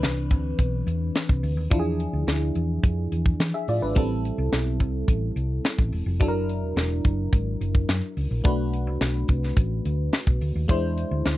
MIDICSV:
0, 0, Header, 1, 4, 480
1, 0, Start_track
1, 0, Tempo, 561272
1, 1469, Time_signature, 4, 2, 24, 8
1, 9728, End_track
2, 0, Start_track
2, 0, Title_t, "FM electric piano"
2, 0, Program_c, 0, 5
2, 0, Control_c, 0, 64, 127
2, 0, Note_on_c, 0, 52, 77
2, 0, Note_on_c, 0, 60, 66
2, 0, Note_on_c, 0, 62, 66
2, 0, Note_on_c, 0, 71, 78
2, 1428, Note_off_c, 0, 52, 0
2, 1432, Note_off_c, 0, 60, 0
2, 1436, Note_off_c, 0, 62, 0
2, 1457, Note_on_c, 0, 53, 73
2, 1464, Note_on_c, 0, 62, 72
2, 1467, Note_off_c, 0, 71, 0
2, 1472, Note_on_c, 0, 64, 66
2, 1481, Note_on_c, 0, 65, 62
2, 1482, Control_c, 0, 64, 0
2, 1531, Note_off_c, 0, 65, 0
2, 1534, Note_on_c, 0, 68, 80
2, 1651, Control_c, 0, 64, 127
2, 2878, Note_off_c, 0, 62, 0
2, 2882, Note_off_c, 0, 64, 0
2, 2914, Note_off_c, 0, 68, 0
2, 3029, Note_on_c, 0, 76, 60
2, 3034, Note_on_c, 0, 68, 53
2, 3143, Note_off_c, 0, 76, 0
2, 3146, Note_off_c, 0, 68, 0
2, 3153, Note_on_c, 0, 74, 63
2, 3157, Note_on_c, 0, 65, 60
2, 3265, Note_off_c, 0, 74, 0
2, 3267, Note_off_c, 0, 65, 0
2, 3269, Note_on_c, 0, 71, 63
2, 3275, Note_on_c, 0, 62, 48
2, 3349, Note_off_c, 0, 53, 0
2, 3378, Note_on_c, 0, 55, 72
2, 3384, Note_on_c, 0, 60, 71
2, 3392, Note_on_c, 0, 64, 69
2, 3399, Note_on_c, 0, 69, 77
2, 3401, Control_c, 0, 64, 0
2, 3497, Note_off_c, 0, 71, 0
2, 3500, Note_off_c, 0, 62, 0
2, 3572, Control_c, 0, 64, 127
2, 5269, Note_off_c, 0, 55, 0
2, 5272, Note_off_c, 0, 60, 0
2, 5276, Note_off_c, 0, 64, 0
2, 5279, Note_off_c, 0, 69, 0
2, 5300, Note_on_c, 0, 54, 76
2, 5306, Note_on_c, 0, 62, 73
2, 5313, Note_on_c, 0, 64, 68
2, 5321, Control_c, 0, 64, 0
2, 5321, Note_on_c, 0, 69, 65
2, 5371, Note_off_c, 0, 69, 0
2, 5374, Note_on_c, 0, 70, 81
2, 5456, Control_c, 0, 64, 127
2, 7189, Note_off_c, 0, 54, 0
2, 7192, Note_off_c, 0, 62, 0
2, 7195, Note_off_c, 0, 64, 0
2, 7216, Note_on_c, 0, 57, 72
2, 7221, Note_on_c, 0, 62, 68
2, 7226, Note_off_c, 0, 70, 0
2, 7228, Note_on_c, 0, 66, 68
2, 7235, Note_on_c, 0, 71, 73
2, 7240, Control_c, 0, 64, 0
2, 7393, Control_c, 0, 64, 127
2, 9105, Note_off_c, 0, 57, 0
2, 9108, Note_off_c, 0, 62, 0
2, 9111, Note_off_c, 0, 66, 0
2, 9115, Note_off_c, 0, 71, 0
2, 9134, Note_on_c, 0, 56, 76
2, 9142, Note_on_c, 0, 62, 64
2, 9149, Note_on_c, 0, 64, 71
2, 9155, Control_c, 0, 64, 0
2, 9155, Note_on_c, 0, 72, 84
2, 9316, Control_c, 0, 64, 127
2, 9728, Note_off_c, 0, 56, 0
2, 9728, Note_off_c, 0, 62, 0
2, 9728, Note_off_c, 0, 64, 0
2, 9728, Note_off_c, 0, 72, 0
2, 9728, End_track
3, 0, Start_track
3, 0, Title_t, "Fingered electric bass"
3, 0, Program_c, 1, 33
3, 19, Note_on_c, 1, 36, 84
3, 264, Note_off_c, 1, 36, 0
3, 264, Note_on_c, 1, 38, 86
3, 457, Note_off_c, 1, 38, 0
3, 501, Note_on_c, 1, 35, 83
3, 695, Note_off_c, 1, 35, 0
3, 741, Note_on_c, 1, 40, 87
3, 935, Note_off_c, 1, 40, 0
3, 1105, Note_on_c, 1, 36, 77
3, 1202, Note_off_c, 1, 36, 0
3, 1223, Note_on_c, 1, 38, 86
3, 1342, Note_off_c, 1, 38, 0
3, 1342, Note_on_c, 1, 39, 79
3, 1440, Note_off_c, 1, 39, 0
3, 1465, Note_on_c, 1, 40, 93
3, 1753, Note_off_c, 1, 40, 0
3, 1823, Note_on_c, 1, 38, 83
3, 1921, Note_off_c, 1, 38, 0
3, 1942, Note_on_c, 1, 38, 98
3, 2136, Note_off_c, 1, 38, 0
3, 2183, Note_on_c, 1, 40, 84
3, 2377, Note_off_c, 1, 40, 0
3, 2424, Note_on_c, 1, 41, 82
3, 2617, Note_off_c, 1, 41, 0
3, 2666, Note_on_c, 1, 40, 76
3, 2859, Note_off_c, 1, 40, 0
3, 2905, Note_on_c, 1, 52, 92
3, 3002, Note_off_c, 1, 52, 0
3, 3148, Note_on_c, 1, 45, 84
3, 3244, Note_off_c, 1, 45, 0
3, 3268, Note_on_c, 1, 32, 81
3, 3364, Note_off_c, 1, 32, 0
3, 3388, Note_on_c, 1, 33, 103
3, 3675, Note_off_c, 1, 33, 0
3, 3747, Note_on_c, 1, 36, 89
3, 3843, Note_off_c, 1, 36, 0
3, 3868, Note_on_c, 1, 35, 91
3, 4107, Note_off_c, 1, 35, 0
3, 4107, Note_on_c, 1, 36, 83
3, 4299, Note_off_c, 1, 36, 0
3, 4345, Note_on_c, 1, 33, 80
3, 4538, Note_off_c, 1, 33, 0
3, 4584, Note_on_c, 1, 36, 80
3, 4777, Note_off_c, 1, 36, 0
3, 4947, Note_on_c, 1, 33, 91
3, 5043, Note_off_c, 1, 33, 0
3, 5066, Note_on_c, 1, 28, 83
3, 5163, Note_off_c, 1, 28, 0
3, 5184, Note_on_c, 1, 29, 81
3, 5307, Note_off_c, 1, 29, 0
3, 5307, Note_on_c, 1, 30, 88
3, 5666, Note_off_c, 1, 30, 0
3, 5666, Note_on_c, 1, 28, 82
3, 5763, Note_off_c, 1, 28, 0
3, 5783, Note_on_c, 1, 28, 85
3, 5976, Note_off_c, 1, 28, 0
3, 6027, Note_on_c, 1, 30, 84
3, 6219, Note_off_c, 1, 30, 0
3, 6266, Note_on_c, 1, 32, 88
3, 6458, Note_off_c, 1, 32, 0
3, 6505, Note_on_c, 1, 30, 84
3, 6698, Note_off_c, 1, 30, 0
3, 6746, Note_on_c, 1, 42, 95
3, 6842, Note_off_c, 1, 42, 0
3, 6986, Note_on_c, 1, 37, 80
3, 7082, Note_off_c, 1, 37, 0
3, 7106, Note_on_c, 1, 34, 77
3, 7202, Note_off_c, 1, 34, 0
3, 7224, Note_on_c, 1, 35, 102
3, 7586, Note_off_c, 1, 35, 0
3, 7586, Note_on_c, 1, 36, 88
3, 7682, Note_off_c, 1, 36, 0
3, 7705, Note_on_c, 1, 35, 95
3, 7897, Note_off_c, 1, 35, 0
3, 7942, Note_on_c, 1, 36, 88
3, 8135, Note_off_c, 1, 36, 0
3, 8183, Note_on_c, 1, 33, 88
3, 8375, Note_off_c, 1, 33, 0
3, 8428, Note_on_c, 1, 38, 87
3, 8618, Note_off_c, 1, 38, 0
3, 8783, Note_on_c, 1, 35, 83
3, 8879, Note_off_c, 1, 35, 0
3, 8905, Note_on_c, 1, 38, 87
3, 9001, Note_off_c, 1, 38, 0
3, 9027, Note_on_c, 1, 39, 76
3, 9121, Note_off_c, 1, 39, 0
3, 9144, Note_on_c, 1, 40, 105
3, 9431, Note_off_c, 1, 40, 0
3, 9504, Note_on_c, 1, 38, 96
3, 9599, Note_off_c, 1, 38, 0
3, 9625, Note_on_c, 1, 38, 83
3, 9728, Note_off_c, 1, 38, 0
3, 9728, End_track
4, 0, Start_track
4, 0, Title_t, "Drums"
4, 28, Note_on_c, 9, 38, 90
4, 30, Note_on_c, 9, 42, 75
4, 113, Note_off_c, 9, 38, 0
4, 115, Note_off_c, 9, 42, 0
4, 261, Note_on_c, 9, 42, 70
4, 264, Note_on_c, 9, 36, 76
4, 346, Note_off_c, 9, 42, 0
4, 349, Note_off_c, 9, 36, 0
4, 503, Note_on_c, 9, 36, 79
4, 513, Note_on_c, 9, 42, 79
4, 588, Note_off_c, 9, 36, 0
4, 598, Note_off_c, 9, 42, 0
4, 750, Note_on_c, 9, 42, 75
4, 836, Note_off_c, 9, 42, 0
4, 986, Note_on_c, 9, 42, 76
4, 988, Note_on_c, 9, 38, 102
4, 1072, Note_off_c, 9, 42, 0
4, 1074, Note_off_c, 9, 38, 0
4, 1106, Note_on_c, 9, 36, 83
4, 1191, Note_off_c, 9, 36, 0
4, 1228, Note_on_c, 9, 46, 69
4, 1314, Note_off_c, 9, 46, 0
4, 1466, Note_on_c, 9, 36, 121
4, 1467, Note_on_c, 9, 42, 98
4, 1551, Note_off_c, 9, 36, 0
4, 1553, Note_off_c, 9, 42, 0
4, 1709, Note_on_c, 9, 42, 80
4, 1795, Note_off_c, 9, 42, 0
4, 1949, Note_on_c, 9, 38, 89
4, 1951, Note_on_c, 9, 42, 73
4, 2035, Note_off_c, 9, 38, 0
4, 2037, Note_off_c, 9, 42, 0
4, 2183, Note_on_c, 9, 42, 66
4, 2269, Note_off_c, 9, 42, 0
4, 2424, Note_on_c, 9, 36, 84
4, 2431, Note_on_c, 9, 42, 77
4, 2510, Note_off_c, 9, 36, 0
4, 2517, Note_off_c, 9, 42, 0
4, 2669, Note_on_c, 9, 42, 74
4, 2754, Note_off_c, 9, 42, 0
4, 2785, Note_on_c, 9, 36, 81
4, 2871, Note_off_c, 9, 36, 0
4, 2907, Note_on_c, 9, 42, 77
4, 2909, Note_on_c, 9, 38, 96
4, 2993, Note_off_c, 9, 42, 0
4, 2995, Note_off_c, 9, 38, 0
4, 3147, Note_on_c, 9, 46, 68
4, 3233, Note_off_c, 9, 46, 0
4, 3389, Note_on_c, 9, 36, 110
4, 3390, Note_on_c, 9, 42, 90
4, 3474, Note_off_c, 9, 36, 0
4, 3475, Note_off_c, 9, 42, 0
4, 3636, Note_on_c, 9, 42, 80
4, 3721, Note_off_c, 9, 42, 0
4, 3871, Note_on_c, 9, 38, 95
4, 3873, Note_on_c, 9, 42, 81
4, 3956, Note_off_c, 9, 38, 0
4, 3958, Note_off_c, 9, 42, 0
4, 4104, Note_on_c, 9, 42, 69
4, 4107, Note_on_c, 9, 36, 75
4, 4190, Note_off_c, 9, 42, 0
4, 4193, Note_off_c, 9, 36, 0
4, 4345, Note_on_c, 9, 36, 82
4, 4353, Note_on_c, 9, 42, 77
4, 4431, Note_off_c, 9, 36, 0
4, 4438, Note_off_c, 9, 42, 0
4, 4592, Note_on_c, 9, 42, 68
4, 4677, Note_off_c, 9, 42, 0
4, 4829, Note_on_c, 9, 42, 79
4, 4832, Note_on_c, 9, 38, 100
4, 4915, Note_off_c, 9, 42, 0
4, 4917, Note_off_c, 9, 38, 0
4, 4948, Note_on_c, 9, 36, 83
4, 5033, Note_off_c, 9, 36, 0
4, 5068, Note_on_c, 9, 46, 70
4, 5153, Note_off_c, 9, 46, 0
4, 5307, Note_on_c, 9, 42, 102
4, 5308, Note_on_c, 9, 36, 115
4, 5392, Note_off_c, 9, 42, 0
4, 5393, Note_off_c, 9, 36, 0
4, 5553, Note_on_c, 9, 42, 77
4, 5639, Note_off_c, 9, 42, 0
4, 5791, Note_on_c, 9, 38, 92
4, 5793, Note_on_c, 9, 42, 76
4, 5876, Note_off_c, 9, 38, 0
4, 5878, Note_off_c, 9, 42, 0
4, 6025, Note_on_c, 9, 42, 68
4, 6028, Note_on_c, 9, 36, 79
4, 6110, Note_off_c, 9, 42, 0
4, 6113, Note_off_c, 9, 36, 0
4, 6266, Note_on_c, 9, 36, 84
4, 6276, Note_on_c, 9, 42, 74
4, 6352, Note_off_c, 9, 36, 0
4, 6361, Note_off_c, 9, 42, 0
4, 6512, Note_on_c, 9, 42, 74
4, 6598, Note_off_c, 9, 42, 0
4, 6625, Note_on_c, 9, 36, 80
4, 6711, Note_off_c, 9, 36, 0
4, 6745, Note_on_c, 9, 42, 81
4, 6748, Note_on_c, 9, 38, 110
4, 6831, Note_off_c, 9, 42, 0
4, 6833, Note_off_c, 9, 38, 0
4, 6987, Note_on_c, 9, 46, 71
4, 7073, Note_off_c, 9, 46, 0
4, 7226, Note_on_c, 9, 36, 117
4, 7226, Note_on_c, 9, 42, 99
4, 7312, Note_off_c, 9, 36, 0
4, 7312, Note_off_c, 9, 42, 0
4, 7469, Note_on_c, 9, 42, 80
4, 7555, Note_off_c, 9, 42, 0
4, 7705, Note_on_c, 9, 38, 89
4, 7707, Note_on_c, 9, 42, 81
4, 7791, Note_off_c, 9, 38, 0
4, 7793, Note_off_c, 9, 42, 0
4, 7938, Note_on_c, 9, 42, 67
4, 7944, Note_on_c, 9, 36, 80
4, 8024, Note_off_c, 9, 42, 0
4, 8029, Note_off_c, 9, 36, 0
4, 8068, Note_on_c, 9, 38, 28
4, 8153, Note_off_c, 9, 38, 0
4, 8182, Note_on_c, 9, 36, 86
4, 8188, Note_on_c, 9, 42, 84
4, 8267, Note_off_c, 9, 36, 0
4, 8274, Note_off_c, 9, 42, 0
4, 8428, Note_on_c, 9, 42, 72
4, 8513, Note_off_c, 9, 42, 0
4, 8662, Note_on_c, 9, 42, 76
4, 8664, Note_on_c, 9, 38, 107
4, 8748, Note_off_c, 9, 42, 0
4, 8750, Note_off_c, 9, 38, 0
4, 8783, Note_on_c, 9, 36, 87
4, 8869, Note_off_c, 9, 36, 0
4, 8904, Note_on_c, 9, 46, 65
4, 8990, Note_off_c, 9, 46, 0
4, 9144, Note_on_c, 9, 36, 112
4, 9144, Note_on_c, 9, 42, 109
4, 9229, Note_off_c, 9, 36, 0
4, 9229, Note_off_c, 9, 42, 0
4, 9386, Note_on_c, 9, 42, 82
4, 9472, Note_off_c, 9, 42, 0
4, 9625, Note_on_c, 9, 38, 96
4, 9627, Note_on_c, 9, 42, 79
4, 9711, Note_off_c, 9, 38, 0
4, 9713, Note_off_c, 9, 42, 0
4, 9728, End_track
0, 0, End_of_file